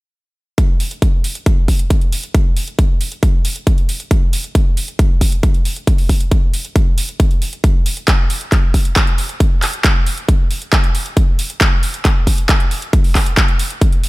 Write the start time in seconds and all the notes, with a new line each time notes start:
0.58 kick, closed hi-hat
0.80 open hi-hat
0.91 closed hi-hat
1.02 kick, closed hi-hat
1.24 open hi-hat
1.35 closed hi-hat
1.46 kick, closed hi-hat
1.68 kick, open hi-hat
1.79 closed hi-hat
1.90 kick, closed hi-hat
2.01 closed hi-hat
2.12 open hi-hat
2.23 closed hi-hat
2.34 kick, closed hi-hat
2.57 open hi-hat
2.68 closed hi-hat
2.79 kick, closed hi-hat
3.01 open hi-hat
3.12 closed hi-hat
3.23 kick, closed hi-hat
3.45 open hi-hat
3.56 closed hi-hat
3.67 kick, closed hi-hat
3.78 closed hi-hat
3.89 open hi-hat
4.00 closed hi-hat
4.11 kick, closed hi-hat
4.33 open hi-hat
4.44 closed hi-hat
4.55 kick, closed hi-hat
4.77 open hi-hat
4.88 closed hi-hat
4.99 kick, closed hi-hat
5.21 kick, open hi-hat
5.32 closed hi-hat
5.43 kick, closed hi-hat
5.54 closed hi-hat
5.65 open hi-hat
5.76 closed hi-hat
5.87 kick, closed hi-hat
5.98 open hi-hat
6.09 kick, open hi-hat
6.20 closed hi-hat
6.31 kick, closed hi-hat
6.54 open hi-hat
6.65 closed hi-hat
6.76 kick, closed hi-hat
6.98 open hi-hat
7.09 closed hi-hat
7.20 kick, closed hi-hat
7.31 closed hi-hat
7.42 open hi-hat
7.53 closed hi-hat
7.64 kick, closed hi-hat
7.86 open hi-hat
7.97 closed hi-hat
8.08 kick, clap, closed hi-hat
8.30 open hi-hat
8.41 closed hi-hat
8.52 kick, clap, closed hi-hat
8.74 kick, open hi-hat
8.85 closed hi-hat
8.96 kick, clap, closed hi-hat
9.07 closed hi-hat
9.18 open hi-hat
9.29 closed hi-hat
9.40 kick, closed hi-hat
9.62 clap, open hi-hat
9.73 closed hi-hat
9.84 kick, clap, closed hi-hat
10.07 open hi-hat
10.18 closed hi-hat
10.29 kick, closed hi-hat
10.51 open hi-hat
10.62 closed hi-hat
10.73 kick, clap, closed hi-hat
10.84 closed hi-hat
10.95 open hi-hat
11.06 closed hi-hat
11.17 kick, closed hi-hat
11.39 open hi-hat
11.50 closed hi-hat
11.61 kick, clap, closed hi-hat
11.83 open hi-hat
11.94 closed hi-hat
12.05 kick, clap, closed hi-hat
12.27 kick, open hi-hat
12.38 closed hi-hat
12.49 kick, clap, closed hi-hat
12.60 closed hi-hat
12.71 open hi-hat
12.82 closed hi-hat
12.93 kick, closed hi-hat
13.04 open hi-hat
13.15 kick, clap, open hi-hat
13.26 closed hi-hat
13.37 kick, clap, closed hi-hat
13.48 closed hi-hat
13.59 open hi-hat
13.70 closed hi-hat
13.81 kick, closed hi-hat
13.93 closed hi-hat
14.04 open hi-hat